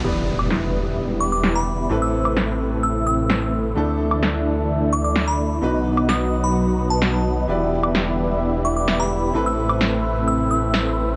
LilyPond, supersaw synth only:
\new Staff \with { instrumentName = "Supersaw synth" } { \time 4/4 \key e \minor \tempo 4 = 129 <b e' g' d'' e''>1 | <a c' e' b'>1 | <a d' e' d'' e''>1 | <fis b dis' b' dis''>1 |
<b e' g' d'' e''>1 | <a c' e' b' e''>1 | }